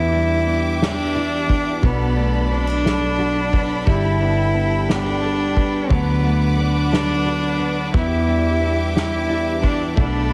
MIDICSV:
0, 0, Header, 1, 7, 480
1, 0, Start_track
1, 0, Tempo, 677966
1, 1299, Time_signature, 6, 3, 24, 8
1, 7314, End_track
2, 0, Start_track
2, 0, Title_t, "String section"
2, 0, Program_c, 0, 48
2, 0, Note_on_c, 0, 67, 79
2, 0, Note_on_c, 0, 76, 75
2, 0, Note_on_c, 0, 86, 85
2, 1281, Note_off_c, 0, 86, 0
2, 1285, Note_off_c, 0, 67, 0
2, 1286, Note_off_c, 0, 76, 0
2, 1289, Note_on_c, 0, 83, 89
2, 1290, Note_on_c, 0, 69, 74
2, 1295, Note_on_c, 0, 74, 74
2, 2724, Note_off_c, 0, 74, 0
2, 2736, Note_on_c, 0, 79, 70
2, 4148, Note_off_c, 0, 83, 0
2, 4149, Note_off_c, 0, 69, 0
2, 4165, Note_off_c, 0, 79, 0
2, 4176, Note_on_c, 0, 78, 68
2, 4179, Note_on_c, 0, 86, 84
2, 4183, Note_on_c, 0, 71, 79
2, 5604, Note_off_c, 0, 78, 0
2, 5605, Note_off_c, 0, 86, 0
2, 5607, Note_off_c, 0, 71, 0
2, 5628, Note_on_c, 0, 86, 82
2, 5630, Note_on_c, 0, 67, 83
2, 5632, Note_on_c, 0, 76, 78
2, 7049, Note_off_c, 0, 86, 0
2, 7050, Note_off_c, 0, 67, 0
2, 7051, Note_off_c, 0, 76, 0
2, 7062, Note_on_c, 0, 83, 87
2, 7066, Note_on_c, 0, 74, 76
2, 7067, Note_on_c, 0, 69, 81
2, 7314, Note_off_c, 0, 69, 0
2, 7314, Note_off_c, 0, 74, 0
2, 7314, Note_off_c, 0, 83, 0
2, 7314, End_track
3, 0, Start_track
3, 0, Title_t, "Cello"
3, 0, Program_c, 1, 42
3, 0, Note_on_c, 1, 64, 114
3, 587, Note_on_c, 1, 62, 110
3, 598, Note_off_c, 1, 64, 0
3, 1304, Note_on_c, 1, 59, 90
3, 1315, Note_off_c, 1, 62, 0
3, 1777, Note_off_c, 1, 59, 0
3, 1782, Note_on_c, 1, 62, 111
3, 2740, Note_on_c, 1, 64, 106
3, 2751, Note_off_c, 1, 62, 0
3, 3468, Note_on_c, 1, 62, 98
3, 3479, Note_off_c, 1, 64, 0
3, 4184, Note_on_c, 1, 59, 93
3, 4195, Note_off_c, 1, 62, 0
3, 4672, Note_on_c, 1, 62, 113
3, 4683, Note_off_c, 1, 59, 0
3, 5618, Note_off_c, 1, 62, 0
3, 5623, Note_on_c, 1, 64, 101
3, 6313, Note_off_c, 1, 64, 0
3, 6343, Note_on_c, 1, 64, 102
3, 6793, Note_off_c, 1, 64, 0
3, 6816, Note_on_c, 1, 62, 90
3, 7041, Note_off_c, 1, 62, 0
3, 7061, Note_on_c, 1, 62, 84
3, 7314, Note_off_c, 1, 62, 0
3, 7314, End_track
4, 0, Start_track
4, 0, Title_t, "Clean electric guitar"
4, 0, Program_c, 2, 27
4, 0, Note_on_c, 2, 59, 74
4, 0, Note_on_c, 2, 62, 60
4, 88, Note_off_c, 2, 62, 0
4, 91, Note_on_c, 2, 62, 64
4, 327, Note_off_c, 2, 59, 0
4, 330, Note_on_c, 2, 59, 58
4, 565, Note_on_c, 2, 67, 57
4, 810, Note_off_c, 2, 62, 0
4, 813, Note_on_c, 2, 62, 60
4, 1054, Note_off_c, 2, 59, 0
4, 1056, Note_on_c, 2, 59, 61
4, 1294, Note_on_c, 2, 54, 81
4, 1341, Note_off_c, 2, 67, 0
4, 1530, Note_off_c, 2, 62, 0
4, 1533, Note_on_c, 2, 62, 60
4, 1774, Note_off_c, 2, 59, 0
4, 1777, Note_on_c, 2, 59, 58
4, 2016, Note_on_c, 2, 69, 65
4, 2253, Note_off_c, 2, 62, 0
4, 2255, Note_on_c, 2, 62, 58
4, 2495, Note_off_c, 2, 59, 0
4, 2498, Note_on_c, 2, 59, 59
4, 2736, Note_off_c, 2, 54, 0
4, 2738, Note_on_c, 2, 55, 78
4, 2975, Note_off_c, 2, 62, 0
4, 2978, Note_on_c, 2, 62, 63
4, 3216, Note_off_c, 2, 59, 0
4, 3219, Note_on_c, 2, 59, 61
4, 3240, Note_off_c, 2, 69, 0
4, 3465, Note_on_c, 2, 67, 60
4, 3584, Note_off_c, 2, 67, 0
4, 3584, Note_on_c, 2, 69, 63
4, 3702, Note_off_c, 2, 62, 0
4, 3705, Note_on_c, 2, 62, 62
4, 3943, Note_off_c, 2, 59, 0
4, 3946, Note_on_c, 2, 59, 63
4, 4180, Note_off_c, 2, 55, 0
4, 4184, Note_on_c, 2, 54, 78
4, 4231, Note_off_c, 2, 69, 0
4, 4419, Note_off_c, 2, 62, 0
4, 4422, Note_on_c, 2, 62, 60
4, 4659, Note_off_c, 2, 59, 0
4, 4661, Note_on_c, 2, 59, 62
4, 4900, Note_on_c, 2, 69, 59
4, 5142, Note_off_c, 2, 62, 0
4, 5145, Note_on_c, 2, 62, 62
4, 5374, Note_off_c, 2, 59, 0
4, 5377, Note_on_c, 2, 59, 65
4, 5619, Note_off_c, 2, 59, 0
4, 5622, Note_on_c, 2, 59, 82
4, 5623, Note_off_c, 2, 54, 0
4, 5668, Note_off_c, 2, 69, 0
4, 5856, Note_off_c, 2, 62, 0
4, 5859, Note_on_c, 2, 62, 65
4, 6095, Note_off_c, 2, 59, 0
4, 6098, Note_on_c, 2, 59, 60
4, 6340, Note_on_c, 2, 67, 64
4, 6574, Note_off_c, 2, 62, 0
4, 6577, Note_on_c, 2, 62, 61
4, 6810, Note_off_c, 2, 59, 0
4, 6813, Note_on_c, 2, 59, 66
4, 7049, Note_off_c, 2, 59, 0
4, 7052, Note_on_c, 2, 57, 72
4, 7107, Note_off_c, 2, 67, 0
4, 7292, Note_off_c, 2, 62, 0
4, 7314, Note_off_c, 2, 57, 0
4, 7314, End_track
5, 0, Start_track
5, 0, Title_t, "Nylon-string guitar"
5, 0, Program_c, 3, 24
5, 0, Note_on_c, 3, 40, 83
5, 0, Note_on_c, 3, 59, 58
5, 99, Note_on_c, 3, 55, 61
5, 343, Note_off_c, 3, 59, 0
5, 346, Note_on_c, 3, 62, 61
5, 578, Note_on_c, 3, 52, 73
5, 817, Note_on_c, 3, 64, 65
5, 1042, Note_off_c, 3, 62, 0
5, 1045, Note_on_c, 3, 62, 56
5, 1288, Note_on_c, 3, 47, 84
5, 1298, Note_off_c, 3, 40, 0
5, 1347, Note_off_c, 3, 52, 0
5, 1347, Note_off_c, 3, 64, 0
5, 1348, Note_off_c, 3, 55, 0
5, 1526, Note_on_c, 3, 57, 61
5, 1776, Note_off_c, 3, 62, 0
5, 1779, Note_on_c, 3, 60, 62
5, 1892, Note_off_c, 3, 60, 0
5, 1892, Note_on_c, 3, 62, 44
5, 2019, Note_on_c, 3, 54, 67
5, 2257, Note_on_c, 3, 66, 60
5, 2485, Note_off_c, 3, 62, 0
5, 2493, Note_on_c, 3, 62, 53
5, 2735, Note_off_c, 3, 47, 0
5, 2740, Note_off_c, 3, 54, 0
5, 2744, Note_on_c, 3, 55, 81
5, 2787, Note_off_c, 3, 66, 0
5, 2972, Note_off_c, 3, 57, 0
5, 2975, Note_on_c, 3, 59, 60
5, 3216, Note_off_c, 3, 62, 0
5, 3219, Note_on_c, 3, 62, 61
5, 3457, Note_off_c, 3, 59, 0
5, 3460, Note_on_c, 3, 59, 69
5, 3700, Note_on_c, 3, 69, 65
5, 3936, Note_off_c, 3, 62, 0
5, 3939, Note_on_c, 3, 62, 55
5, 4169, Note_on_c, 3, 50, 83
5, 4183, Note_off_c, 3, 55, 0
5, 4229, Note_off_c, 3, 69, 0
5, 4412, Note_off_c, 3, 59, 0
5, 4415, Note_on_c, 3, 57, 59
5, 4653, Note_off_c, 3, 62, 0
5, 4656, Note_on_c, 3, 59, 59
5, 4898, Note_on_c, 3, 54, 69
5, 5136, Note_on_c, 3, 66, 66
5, 5378, Note_off_c, 3, 59, 0
5, 5381, Note_on_c, 3, 59, 60
5, 5632, Note_on_c, 3, 40, 82
5, 5653, Note_off_c, 3, 50, 0
5, 5666, Note_off_c, 3, 57, 0
5, 5667, Note_off_c, 3, 54, 0
5, 5667, Note_off_c, 3, 66, 0
5, 5862, Note_on_c, 3, 55, 64
5, 6108, Note_off_c, 3, 59, 0
5, 6111, Note_on_c, 3, 62, 63
5, 6338, Note_on_c, 3, 52, 75
5, 6582, Note_on_c, 3, 64, 69
5, 6806, Note_off_c, 3, 62, 0
5, 6809, Note_on_c, 3, 62, 58
5, 7062, Note_on_c, 3, 47, 90
5, 7065, Note_off_c, 3, 40, 0
5, 7106, Note_off_c, 3, 52, 0
5, 7108, Note_off_c, 3, 55, 0
5, 7108, Note_off_c, 3, 64, 0
5, 7314, Note_off_c, 3, 47, 0
5, 7314, Note_off_c, 3, 62, 0
5, 7314, End_track
6, 0, Start_track
6, 0, Title_t, "Fingered electric bass"
6, 0, Program_c, 4, 33
6, 0, Note_on_c, 4, 40, 106
6, 1269, Note_off_c, 4, 40, 0
6, 1297, Note_on_c, 4, 35, 108
6, 2712, Note_off_c, 4, 35, 0
6, 2741, Note_on_c, 4, 31, 104
6, 4153, Note_off_c, 4, 31, 0
6, 4183, Note_on_c, 4, 38, 103
6, 5593, Note_off_c, 4, 38, 0
6, 5623, Note_on_c, 4, 40, 106
6, 7032, Note_off_c, 4, 40, 0
6, 7063, Note_on_c, 4, 35, 105
6, 7314, Note_off_c, 4, 35, 0
6, 7314, End_track
7, 0, Start_track
7, 0, Title_t, "Drums"
7, 94, Note_on_c, 9, 51, 45
7, 165, Note_off_c, 9, 51, 0
7, 335, Note_on_c, 9, 51, 36
7, 406, Note_off_c, 9, 51, 0
7, 576, Note_on_c, 9, 51, 66
7, 583, Note_on_c, 9, 38, 106
7, 647, Note_off_c, 9, 51, 0
7, 654, Note_off_c, 9, 38, 0
7, 809, Note_on_c, 9, 51, 49
7, 879, Note_off_c, 9, 51, 0
7, 1057, Note_on_c, 9, 36, 82
7, 1057, Note_on_c, 9, 51, 41
7, 1128, Note_off_c, 9, 36, 0
7, 1128, Note_off_c, 9, 51, 0
7, 1292, Note_on_c, 9, 51, 79
7, 1296, Note_on_c, 9, 36, 124
7, 1363, Note_off_c, 9, 51, 0
7, 1367, Note_off_c, 9, 36, 0
7, 1535, Note_on_c, 9, 51, 44
7, 1605, Note_off_c, 9, 51, 0
7, 1779, Note_on_c, 9, 51, 34
7, 1850, Note_off_c, 9, 51, 0
7, 2018, Note_on_c, 9, 51, 70
7, 2025, Note_on_c, 9, 38, 105
7, 2089, Note_off_c, 9, 51, 0
7, 2096, Note_off_c, 9, 38, 0
7, 2256, Note_on_c, 9, 51, 46
7, 2326, Note_off_c, 9, 51, 0
7, 2500, Note_on_c, 9, 36, 83
7, 2500, Note_on_c, 9, 51, 45
7, 2571, Note_off_c, 9, 36, 0
7, 2571, Note_off_c, 9, 51, 0
7, 2737, Note_on_c, 9, 51, 78
7, 2739, Note_on_c, 9, 36, 120
7, 2808, Note_off_c, 9, 51, 0
7, 2810, Note_off_c, 9, 36, 0
7, 2981, Note_on_c, 9, 51, 42
7, 3051, Note_off_c, 9, 51, 0
7, 3222, Note_on_c, 9, 51, 37
7, 3293, Note_off_c, 9, 51, 0
7, 3459, Note_on_c, 9, 51, 70
7, 3466, Note_on_c, 9, 38, 104
7, 3530, Note_off_c, 9, 51, 0
7, 3537, Note_off_c, 9, 38, 0
7, 3693, Note_on_c, 9, 51, 47
7, 3764, Note_off_c, 9, 51, 0
7, 3940, Note_on_c, 9, 51, 41
7, 3941, Note_on_c, 9, 36, 81
7, 4011, Note_off_c, 9, 36, 0
7, 4011, Note_off_c, 9, 51, 0
7, 4180, Note_on_c, 9, 51, 75
7, 4181, Note_on_c, 9, 36, 123
7, 4251, Note_off_c, 9, 36, 0
7, 4251, Note_off_c, 9, 51, 0
7, 4421, Note_on_c, 9, 51, 46
7, 4492, Note_off_c, 9, 51, 0
7, 4662, Note_on_c, 9, 51, 36
7, 4733, Note_off_c, 9, 51, 0
7, 4902, Note_on_c, 9, 51, 74
7, 4909, Note_on_c, 9, 38, 107
7, 4973, Note_off_c, 9, 51, 0
7, 4980, Note_off_c, 9, 38, 0
7, 5134, Note_on_c, 9, 51, 49
7, 5205, Note_off_c, 9, 51, 0
7, 5380, Note_on_c, 9, 51, 46
7, 5451, Note_off_c, 9, 51, 0
7, 5618, Note_on_c, 9, 51, 77
7, 5622, Note_on_c, 9, 36, 127
7, 5689, Note_off_c, 9, 51, 0
7, 5693, Note_off_c, 9, 36, 0
7, 5862, Note_on_c, 9, 51, 43
7, 5933, Note_off_c, 9, 51, 0
7, 6100, Note_on_c, 9, 51, 37
7, 6171, Note_off_c, 9, 51, 0
7, 6341, Note_on_c, 9, 51, 74
7, 6348, Note_on_c, 9, 38, 106
7, 6412, Note_off_c, 9, 51, 0
7, 6419, Note_off_c, 9, 38, 0
7, 6578, Note_on_c, 9, 51, 50
7, 6649, Note_off_c, 9, 51, 0
7, 6821, Note_on_c, 9, 36, 82
7, 6821, Note_on_c, 9, 51, 43
7, 6892, Note_off_c, 9, 36, 0
7, 6892, Note_off_c, 9, 51, 0
7, 7061, Note_on_c, 9, 36, 125
7, 7062, Note_on_c, 9, 51, 77
7, 7132, Note_off_c, 9, 36, 0
7, 7132, Note_off_c, 9, 51, 0
7, 7314, End_track
0, 0, End_of_file